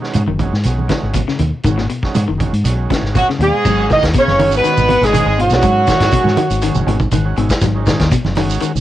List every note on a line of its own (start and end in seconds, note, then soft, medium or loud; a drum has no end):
0.00 0.22 D#3 medium
0.00 0.23 G#3 medium
0.00 0.23 C#4 medium
0.00 0.23 F#4 loud
0.00 snare soft
0.13 0.26 G#2 medium
0.13 closed hi-hat medium
0.13 high conga medium
0.13 shekere medium
0.27 0.49 F#1 medium
0.27 0.46 D#3 medium
0.27 high conga medium
0.39 0.54 D#3 medium
0.39 0.54 G#3 medium
0.39 0.55 C#4 medium
0.39 0.55 F#4 loud
0.39 kick medium
0.39 closed hi-hat soft
0.39 high conga medium
0.39 low conga medium
0.39 shekere soft
0.53 0.63 G#2 medium
0.53 snare soft
0.63 0.87 B1 medium
0.63 1.21 D#3 medium
0.63 1.21 G#3 medium
0.63 1.21 C#4 medium
0.63 1.22 F#4 medium
0.63 closed hi-hat medium
0.63 shekere medium
0.79 high conga medium
0.89 1.08 C#3 medium
0.89 kick medium
0.89 snare medium
0.89 closed hi-hat medium
0.89 high conga medium
0.89 shekere soft
1.03 1.25 G#1 medium
1.13 1.25 B2 medium
1.13 kick medium
1.13 closed hi-hat medium
1.13 high conga medium
1.13 shekere medium
1.28 1.37 C#3 medium
1.28 muted fingered electric bass stroke soft
1.28 snare soft
1.39 1.51 D#2 medium
1.39 1.58 B2 medium
1.39 closed hi-hat medium
1.39 high conga medium
1.39 low conga medium
1.39 shekere soft
1.63 1.86 G#1 loud
1.63 1.86 D#3 medium
1.63 1.75 D#3 medium
1.63 1.86 G#3 medium
1.63 1.86 C#4 medium
1.63 1.87 F#4 medium
1.63 kick medium
1.63 closed hi-hat medium
1.63 shekere medium
1.78 1.87 A#2 medium
1.78 snare soft
1.89 2.08 B2 medium
1.89 closed hi-hat medium
1.89 shekere soft
2.02 2.23 D#3 medium
2.02 2.24 G#3 medium
2.02 2.24 C#4 medium
2.02 2.25 F#4 loud
2.02 kick medium
2.02 snare soft
2.15 2.26 G#2 loud
2.15 closed hi-hat medium
2.15 high conga medium
2.15 shekere medium
2.28 2.50 F#1 medium
2.28 2.46 D#3 medium
2.38 2.53 D#3 medium
2.38 2.54 G#3 medium
2.38 2.54 C#4 medium
2.38 2.54 F#4 medium
2.38 kick medium
2.38 closed hi-hat soft
2.38 high conga medium
2.38 low conga medium
2.38 shekere soft
2.53 2.63 G#2 medium
2.53 closed hi-hat medium
2.64 2.86 B1 medium
2.64 3.20 D#3 medium
2.64 3.20 G#3 medium
2.64 3.21 C#4 medium
2.64 3.21 F#4 medium
2.64 closed hi-hat medium
2.64 shekere medium
2.90 3.09 C#3 medium
2.90 kick medium
2.90 snare medium
2.90 closed hi-hat soft
2.90 high conga medium
2.90 shekere soft
3.02 3.24 G#1 medium
3.02 snare soft
3.14 3.27 F#2 medium
3.14 3.25 B2 medium
3.14 3.28 F#3 medium
3.14 3.27 F#4 medium
3.14 3.38 D#5 medium
3.14 kick medium
3.14 closed hi-hat medium
3.14 high conga medium
3.14 shekere medium
3.28 3.37 C#3 medium
3.28 muted fingered electric bass stroke soft
3.28 snare soft
3.39 3.51 D#2 medium
3.39 3.59 B2 medium
3.39 3.87 G#3 medium
3.39 3.87 G#4 loud
3.39 3.62 G#5 medium
3.39 closed hi-hat medium
3.39 low conga medium
3.39 shekere soft
3.43 3.88 G#2 medium
3.65 3.98 G#1 medium
3.65 3.84 F#3 medium
3.65 kick medium
3.65 crash medium
3.65 high conga soft
3.65 low conga medium
3.65 shekere medium
3.76 4.11 D#3 medium
3.76 4.11 G#3 medium
3.76 4.12 C#4 medium
3.76 4.12 F#4 medium
3.90 4.09 D#3 medium
3.90 4.03 D#3 medium
3.90 4.03 D#4 medium
3.90 4.03 D#5 loud
3.90 kick medium
3.90 snare medium
3.90 closed hi-hat medium
3.90 shekere medium
4.03 4.13 D#2 medium
4.03 kick medium
4.03 snare medium
4.03 closed hi-hat soft
4.03 shekere soft
4.13 4.33 B2 medium
4.13 4.51 C#3 medium
4.13 muted fingered electric bass stroke soft
4.13 kick medium
4.13 closed hi-hat medium
4.13 high conga soft
4.13 shekere medium
4.18 4.57 C#4 medium
4.18 4.52 C#5 loud
4.28 4.52 F#1 medium
4.28 snare soft
4.28 high conga medium
4.38 4.74 D#3 medium
4.38 4.58 D#3 medium
4.38 4.75 G#3 medium
4.38 4.75 C#4 medium
4.38 4.75 F#4 medium
4.38 open hi-hat medium
4.38 high conga loud
4.38 shekere soft
4.52 4.62 G#1 medium
4.52 shekere medium
4.56 5.04 B2 medium
4.56 5.07 B3 medium
4.56 5.04 B4 loud
4.64 4.83 D#3 medium
4.64 muted fingered electric bass stroke soft
4.64 closed hi-hat medium
4.64 high conga soft
4.64 shekere medium
4.77 4.99 G#1 medium
4.77 shekere medium
4.89 5.08 B2 medium
4.89 closed hi-hat medium
4.89 high conga medium
5.01 5.23 G#1 medium
5.01 5.40 G#2 medium
5.01 5.30 D#3 medium
5.01 5.30 G#3 medium
5.01 5.30 C#4 medium
5.01 5.30 F#4 medium
5.01 5.40 G#4 loud
5.01 snare soft
5.01 closed hi-hat medium
5.01 low conga medium
5.01 shekere soft
5.05 5.40 G#3 medium
5.13 5.32 D#3 medium
5.13 closed hi-hat medium
5.13 high conga medium
5.13 shekere medium
5.26 5.48 G#1 loud
5.38 6.85 F#2 medium
5.38 5.57 B2 medium
5.38 6.85 F#4 loud
5.38 closed hi-hat medium
5.38 shekere soft
5.43 6.86 F#3 medium
5.50 5.64 B1 medium
5.50 5.86 D#3 medium
5.50 5.86 G#3 medium
5.50 5.86 C#4 medium
5.50 5.86 F#4 medium
5.50 snare medium
5.50 shekere medium
5.62 5.85 G#2 loud
5.62 5.82 F#3 medium
5.62 kick medium
5.62 closed hi-hat medium
5.62 high conga soft
5.62 low conga medium
5.62 shekere medium
5.87 6.07 D#3 medium
5.87 kick medium
5.87 snare medium
5.87 closed hi-hat medium
5.87 shekere medium
6.00 6.11 G#1 loud
6.00 kick medium
6.00 snare medium
6.00 closed hi-hat medium
6.00 shekere soft
6.12 6.32 B2 medium
6.12 6.41 D#3 medium
6.12 6.42 G#3 medium
6.12 6.42 C#4 medium
6.12 6.42 F#4 loud
6.12 kick medium
6.12 closed hi-hat medium
6.12 high conga soft
6.12 shekere medium
6.24 6.35 G#2 medium
6.24 snare soft
6.24 high conga medium
6.37 6.56 D#3 medium
6.37 closed hi-hat medium
6.37 high conga loud
6.37 shekere soft
6.50 6.72 G#1 medium
6.50 closed hi-hat medium
6.50 shekere medium
6.61 6.98 D#3 medium
6.61 6.81 D#3 medium
6.61 6.98 G#3 medium
6.61 6.98 C#4 medium
6.61 6.99 F#4 loud
6.61 closed hi-hat medium
6.61 high conga soft
6.61 shekere medium
6.74 6.85 F#1 medium
6.74 shekere medium
6.87 7.09 G#1 medium
6.87 7.06 B2 medium
6.87 closed hi-hat medium
6.87 high conga medium
7.00 kick medium
7.00 high conga medium
7.00 low conga medium
7.00 shekere soft
7.11 7.34 G#1 medium
7.11 7.31 D#3 medium
7.11 7.36 F#5 medium
7.11 closed hi-hat medium
7.11 high conga medium
7.11 shekere medium
7.25 7.53 D#3 medium
7.25 7.53 G#3 medium
7.25 7.54 C#4 medium
7.25 7.53 F#4 medium
7.36 7.49 G#1 medium
7.36 7.56 B2 medium
7.36 7.60 E5 medium
7.36 closed hi-hat medium
7.36 shekere soft
7.50 kick medium
7.50 snare medium
7.50 closed hi-hat medium
7.50 shekere medium
7.61 7.95 G#1 medium
7.61 7.81 F#3 medium
7.61 kick loud
7.61 snare soft
7.61 closed hi-hat medium
7.61 high conga soft
7.61 low conga medium
7.61 shekere medium
7.74 8.09 D#3 medium
7.74 8.10 G#3 medium
7.74 8.10 C#4 medium
7.74 8.10 D#4 loud
7.86 8.06 D#3 medium
7.86 kick medium
7.86 snare medium
7.86 closed hi-hat soft
7.86 shekere medium
8.00 8.10 D#2 medium
8.00 kick medium
8.00 snare medium
8.00 closed hi-hat soft
8.00 shekere soft
8.12 8.31 B2 medium
8.12 muted fingered electric bass stroke soft
8.12 kick medium
8.12 closed hi-hat medium
8.12 high conga soft
8.12 shekere medium
8.24 8.49 F#1 medium
8.24 snare soft
8.24 high conga medium
8.35 8.72 D#3 loud
8.35 8.55 D#3 medium
8.35 8.72 G#3 medium
8.35 8.72 C#4 medium
8.35 8.73 F#4 loud
8.35 snare soft
8.35 open hi-hat medium
8.35 high conga loud
8.35 shekere soft
8.49 8.60 G#1 medium
8.49 shekere medium
8.60 8.80 D#3 medium
8.60 muted fingered electric bass stroke soft
8.60 closed hi-hat medium
8.60 high conga soft
8.60 shekere medium
8.75 8.80 G#1 medium
8.75 shekere medium